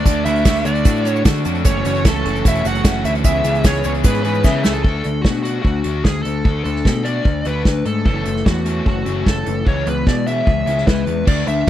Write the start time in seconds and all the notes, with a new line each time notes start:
Already playing: D4 A4 D5 F#5 D6
0.04 D2 A3 D4 F#4, kick, closed hi-hat, shaker
0.25 D2 A3 D4 E4 F#4 E5, closed hi-hat, shaker
0.36 closed hi-hat
0.45 D2 A3 D4 F#4, kick, snare, closed hi-hat, shaker
0.55 snare, closed hi-hat, shaker
0.65 D2 A3 D4 F#4 D5, closed hi-hat, shaker
0.75 closed hi-hat
0.85 A2 A3 D4 F#4, kick, closed hi-hat, shaker
0.95 closed hi-hat, shaker
1.05 A3 C#4 D4 F#4 C#5, closed hi-hat, shaker
1.16 shaker
1.25 D3 A3 D4 F#4, kick, snare, closed hi-hat, shaker
1.35 closed hi-hat
1.45 F2 A3 D4 F#4, closed hi-hat, shaker
1.55 closed hi-hat
1.64 F#1 E3 A3 C#4 F#4 A4 C#5 E5 F#5 C#6, kick, closed hi-hat, shaker
1.85 F#1 E3 A3 C#4 F#4, closed hi-hat, shaker
1.95 closed hi-hat
2.04 C#2 E3 A3 C#4 F#4 A4, kick, snare, closed hi-hat, shaker
2.16 shaker
2.25 F#1 E3 A3 C#4 F#4, closed hi-hat
2.35 closed hi-hat, shaker
2.44 E1 E3 A3 C#4 E4 F#4 E5, kick, closed hi-hat, shaker
2.55 closed hi-hat, shaker
2.64 F#1 E3 A3 C#4 F#4 F#5, closed hi-hat, shaker
2.75 closed hi-hat, shaker
2.84 F#1 E3 A3 C#4 F#4, kick, snare, closed hi-hat, shaker
3.03 D2 E3 A3 C#4 E4 F#4 E5, closed hi-hat, shaker
3.15 closed hi-hat
3.24 C#2 E3 G#3 B3 C#4 E4 G#4 B4 E5 G#5, kick, closed hi-hat, shaker
3.44 C#2 E3 G#3 B3 C#4 G#4, closed hi-hat, shaker
3.55 closed hi-hat, shaker
3.63 C#2 E3 G#3 B3 C#4 G#4 C#5, kick, snare, closed hi-hat, shaker
3.74 snare, closed hi-hat, shaker
3.84 C#2 E3 G#3 B3 C#4 G#4 C#5, closed hi-hat, shaker
3.94 closed hi-hat
4.04 G#2 E3 G#3 B3 C#4 G#4 B4, kick, closed hi-hat, shaker
4.14 closed hi-hat, shaker
4.23 E3 G#3 B3 C#4 G#4 B4, closed hi-hat
4.34 shaker
4.44 C#3 E3 G#3 B3 C#4 E4 G#4 E5, kick, snare, shaker
4.63 C#2 E3 G#3 B3 C#4 G#4 A4, snare, shaker
4.75 shaker
4.83 D2 A3 D4 F#4 A4, kick
5.04 D2 A3 D4, closed hi-hat
5.22 B2 A3 D4 F#4, kick, snare
5.43 A3 D4 F#4, closed hi-hat
5.62 D2 A3 D4 F#4, kick
5.84 D2 A3 D4 F#4, closed hi-hat
6.04 D2 A3 D4 G#4, kick, snare
6.23 D2 A3 D4 A4, closed hi-hat
6.45 D2 A3 D4 F#4, kick
6.64 D2 A3 D4 A4, closed hi-hat
6.76 snare
6.85 B2 A3 D4, kick, snare
7.03 A3 D4 F#4 D5, closed hi-hat
7.25 D2 A3 D4, kick
7.45 D2 A3 D4 F#4 B4, closed hi-hat
7.65 D2 A3 D4, kick, snare
7.85 G#2 A3 D4 A4, closed hi-hat
8.05 F#1 E3 A3 C#4 F#4 A4, kick
8.25 F#1 A3 C#4, closed hi-hat
8.36 snare
8.45 E2 E3 A3 C#4 F#4, kick, snare
8.65 A3 C#4 F#4, closed hi-hat
8.86 F#1 A3 C#4 F#4 A4, kick
9.05 F#1 A3 C#4 F#4, closed hi-hat
9.26 F#1 A3 C#4 A4, kick, snare
9.46 F#1 E3 A3 C#4, closed hi-hat
9.66 C#2 E3 G#3 C#4 C#5, kick
9.86 C#2 E3 G#3 B3 B4, closed hi-hat
10.07 B2 E3 G#3 D5, kick, snare
10.26 E3 G#3 B3 C#4 E5, closed hi-hat
10.46 C#2 E3 G#3 G#4, kick
10.66 C#2 E3 G#3 C#4, closed hi-hat
10.78 snare
10.87 C#2 E3 G#3 B3 B4, kick, snare
11.07 E2 E3 G#3, closed hi-hat
11.25 D2 A3 D4 F#4 D5, kick, crash
11.47 D2 A3 D4 E5, closed hi-hat
11.67 A3